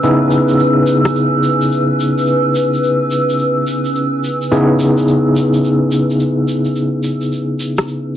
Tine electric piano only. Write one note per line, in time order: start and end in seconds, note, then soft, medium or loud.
0.03 4.50 C#3 medium
0.03 4.50 B3 medium
0.03 4.50 D#4 medium
0.03 4.50 E4 medium
0.03 4.50 G#4 medium
4.52 8.17 C#3 medium
4.52 8.17 B3 medium
4.52 8.17 D#4 medium
4.52 8.17 E4 medium
4.52 8.17 G#4 medium